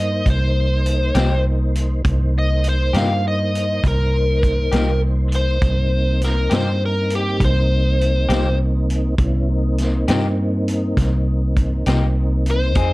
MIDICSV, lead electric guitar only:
0, 0, Header, 1, 2, 480
1, 0, Start_track
1, 0, Key_signature, -3, "minor"
1, 0, Tempo, 595238
1, 1654, Time_signature, 12, 3, 24, 8
1, 10429, End_track
2, 0, Start_track
2, 0, Title_t, "Lead electric guitar"
2, 0, Program_c, 0, 29
2, 0, Note_on_c, 0, 75, 69
2, 220, Note_off_c, 0, 75, 0
2, 242, Note_on_c, 0, 72, 86
2, 1160, Note_off_c, 0, 72, 0
2, 1924, Note_on_c, 0, 75, 77
2, 2142, Note_off_c, 0, 75, 0
2, 2169, Note_on_c, 0, 72, 71
2, 2385, Note_off_c, 0, 72, 0
2, 2393, Note_on_c, 0, 77, 66
2, 2616, Note_off_c, 0, 77, 0
2, 2643, Note_on_c, 0, 75, 65
2, 3094, Note_off_c, 0, 75, 0
2, 3124, Note_on_c, 0, 70, 80
2, 4039, Note_off_c, 0, 70, 0
2, 4317, Note_on_c, 0, 72, 75
2, 5002, Note_off_c, 0, 72, 0
2, 5037, Note_on_c, 0, 70, 83
2, 5257, Note_off_c, 0, 70, 0
2, 5282, Note_on_c, 0, 72, 72
2, 5499, Note_off_c, 0, 72, 0
2, 5528, Note_on_c, 0, 70, 68
2, 5742, Note_off_c, 0, 70, 0
2, 5768, Note_on_c, 0, 67, 66
2, 5982, Note_off_c, 0, 67, 0
2, 6006, Note_on_c, 0, 72, 88
2, 6919, Note_off_c, 0, 72, 0
2, 10085, Note_on_c, 0, 72, 72
2, 10429, Note_off_c, 0, 72, 0
2, 10429, End_track
0, 0, End_of_file